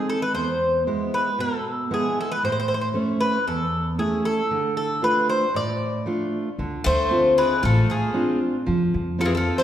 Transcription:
Already playing: G#3 C4 D#4
0.10 A4
0.22 B4
0.34 E2 C5
0.87 G#3 B3 E4
1.14 B4
1.39 B2 A4
1.91 G#3 B3 E4 G#4
2.21 A4
2.32 B4
2.43 A2 C5
2.52 C5
2.60 C5
2.68 C5
2.74 C5
2.81 C5
2.94 A3 C#4 E4
3.21 B4
3.48 E2 A4
3.98 A3 C#4 E4 G#4
4.25 A4
4.51 D3
4.77 A4
5.02 A3 D4 F4 B4
5.30 C5
5.54 A2 D5
6.06 A3 D4 F4
6.59 D2 D3
6.84 D2 A3 C5
7.10 C4 D4 F4
7.38 G#3 B4
7.63 A1 F3 A3 A4
7.90 F3 G#4
8.14 C4 D4 F4
8.66 F2 F3
8.94 F2
9.19 F3 C4 F4 A4
9.25 E3 G#4
9.35 F3 A4
9.58 A3 C5

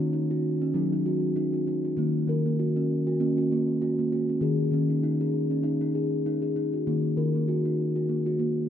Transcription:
Already playing: D#3
0.00 D#4
0.13 D#4
0.31 F#4
0.62 C#4
0.74 F#3 D#4
0.93 D#4
1.06 F#4
1.36 D#4
1.53 F#4
1.67 D#4
1.85 F#4
1.97 D#3 A#3
2.27 D#3 A#4
2.46 A#3
2.59 F#4
2.76 C#4
3.07 F#4
3.20 A#3 C#4
3.38 F#4
3.52 A#3
3.82 F#4
3.99 A#3
4.12 F#4
4.29 C#4
4.41 D#3 G#4
4.71 D#3 C#4
4.90 D#4
5.03 D#4
5.21 G#4
5.50 C#4
5.63 D#4
5.81 D#4
5.95 G#4
6.26 D#4
6.42 G#4
6.56 D#4
6.73 F#4
6.87 D#3 A#3
7.17 D#3 A#4
7.35 A#3
7.48 F#4
7.65 D#4
7.96 F#4
8.09 A#3
8.26 F#4
8.39 A#3

